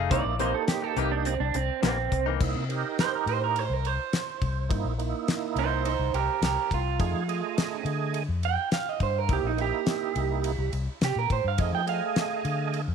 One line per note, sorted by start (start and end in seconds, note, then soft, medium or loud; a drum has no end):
0.00 0.12 A3 soft
0.00 0.11 D#4 medium
0.00 0.11 G#4 medium
0.00 0.10 F5 medium
0.11 0.24 C2 medium
0.11 0.26 C3 medium
0.11 0.26 E3 medium
0.11 0.35 A#3 medium
0.11 0.25 A#3 medium
0.11 0.35 D#4 medium
0.11 0.25 D#4 medium
0.11 0.35 E4 medium
0.11 0.39 D5 medium
0.11 kick loud
0.11 closed hi-hat medium
0.25 0.53 A#1 medium
0.25 muted clean electric guitar stroke soft
0.39 0.54 C3 medium
0.39 0.54 E3 medium
0.39 1.34 A#3 medium
0.39 0.54 A#3 medium
0.39 1.35 D#4 medium
0.39 0.53 D#4 medium
0.39 1.35 G4 medium
0.39 0.54 C5 medium
0.39 closed hi-hat medium
0.54 0.68 A4 medium
0.54 muted clean electric guitar stroke soft
0.68 0.84 G4 medium
0.68 snare loud
0.68 closed hi-hat medium
0.82 0.98 A4 medium
0.82 muted clean electric guitar stroke soft
0.96 1.38 C2 medium
0.96 1.12 C3 medium
0.96 1.12 E3 medium
0.96 1.11 A#3 medium
0.96 1.11 D#4 medium
0.96 1.12 G4 medium
0.96 closed hi-hat medium
1.11 1.26 D4 medium
1.11 muted clean electric guitar stroke soft
1.25 1.40 C4 medium
1.25 muted clean electric guitar stroke soft
1.25 closed hi-hat medium
1.40 1.54 C2 medium
1.40 1.55 D4 medium
1.54 1.68 C2 medium
1.54 1.83 C4 medium
1.54 muted clean electric guitar stroke soft
1.54 closed hi-hat medium
1.83 2.09 A#1 medium
1.83 1.98 C3 medium
1.83 1.98 E3 medium
1.83 1.98 A#3 medium
1.83 2.26 C4 medium
1.83 1.97 D#4 medium
1.83 snare loud
1.83 closed hi-hat medium
1.98 muted clean electric guitar stroke soft
2.12 2.38 C2 medium
2.12 muted clean electric guitar stroke soft
2.12 kick medium
2.12 closed hi-hat medium
2.26 2.42 E3 soft
2.26 2.41 A#3 medium
2.26 2.40 D#4 medium
2.40 2.54 C2 medium
2.40 2.64 A#3 medium
2.40 2.64 D#4 medium
2.40 2.65 E4 medium
2.40 kick loud
2.40 crash medium
2.56 2.83 C3 medium
2.69 3.64 D#4 medium
2.69 3.64 G4 medium
2.69 3.64 A#4 medium
2.69 ride medium
2.99 3.13 C5 medium
2.99 snare loud
2.99 ride medium
3.15 3.28 A#4 medium
3.26 3.67 A2 medium
3.26 3.42 C5 medium
3.26 ride medium
3.44 3.59 A#4 medium
3.56 3.73 C5 medium
3.56 ride medium
3.70 3.97 C2 medium
3.70 3.87 A#4 medium
3.85 4.97 C5 medium
3.85 ride medium
4.13 snare medium
4.13 ride medium
4.42 4.69 C2 medium
4.42 kick medium
4.42 ride medium
4.69 4.84 G2 medium
4.69 4.93 A#3 medium
4.69 4.94 D#4 medium
4.69 4.94 E4 medium
4.69 kick loud
4.69 ride medium
4.84 5.12 A#1 medium
4.98 5.93 A#3 medium
4.98 5.93 D#4 medium
4.98 5.94 E4 medium
4.98 ride medium
5.28 snare loud
5.28 ride medium
5.55 5.97 C2 medium
5.55 5.84 D#4 medium
5.55 5.85 C5 medium
5.55 ride medium
5.85 6.12 D#4 medium
5.85 6.13 C5 medium
5.85 ride medium
5.99 6.13 C2 medium
6.13 6.27 C2 medium
6.13 6.41 G4 medium
6.13 6.42 A#4 medium
6.13 ride medium
6.42 6.56 C2 medium
6.42 6.70 G4 medium
6.42 6.71 A#4 medium
6.42 snare loud
6.42 ride medium
6.71 6.98 C2 loud
6.71 7.84 F4 medium
6.71 kick medium
6.71 ride medium
6.99 7.13 F2 loud
6.99 7.23 A3 medium
6.99 7.23 D#4 medium
6.99 7.24 G#4 medium
6.99 kick loud
6.99 ride medium
7.14 7.41 F3 medium
7.28 8.23 A3 medium
7.28 8.23 G#4 medium
7.28 8.23 D#5 medium
7.28 ride medium
7.58 snare loud
7.58 ride medium
7.85 8.26 D3 medium
7.85 ride medium
8.14 ride medium
8.28 8.56 F2 medium
8.43 8.72 G5 loud
8.43 ride medium
8.72 8.89 F5 medium
8.72 snare loud
8.72 ride medium
8.89 9.01 D#5 medium
9.00 9.28 G2 medium
9.00 9.18 C5 medium
9.00 kick medium
9.00 ride medium
9.18 9.30 A#4 medium
9.28 9.42 C2 loud
9.28 9.52 A#3 medium
9.28 9.53 D#4 medium
9.28 9.53 E4 medium
9.28 kick loud
9.28 ride medium
9.33 9.45 G4 medium
9.43 9.70 A#1 medium
9.43 9.59 D#4 medium
9.57 10.52 A#3 medium
9.57 10.52 D#4 medium
9.57 10.52 E4 medium
9.57 ride medium
9.61 10.71 G4 loud
9.86 snare loud
9.86 ride medium
10.16 10.56 C2 medium
10.16 ride medium
10.44 ride medium
10.58 10.72 C2 medium
10.73 10.86 C2 medium
10.73 ride medium
11.01 11.14 C3 medium
11.01 11.17 G4 medium
11.01 snare loud
11.01 ride medium
11.16 11.28 A#2 medium
11.16 11.31 A#4 medium
11.30 11.43 A2 medium
11.30 11.45 C5 medium
11.30 kick medium
11.30 ride medium
11.44 11.57 G2 medium
11.44 11.60 F5 medium
11.58 11.72 F2 loud
11.58 11.82 A3 medium
11.58 11.82 D#4 medium
11.58 11.82 G#4 medium
11.58 11.73 D#5 medium
11.58 kick loud
11.58 ride medium
11.73 12.00 F3 medium
11.73 11.88 G5 medium
11.86 12.81 A3 medium
11.86 12.82 G#4 medium
11.86 12.81 D#5 medium
11.86 12.95 F5 medium
11.86 ride medium
12.16 snare loud
12.16 ride medium
12.45 12.85 D3 medium
12.45 ride medium
12.74 ride medium
12.88 12.95 F2 medium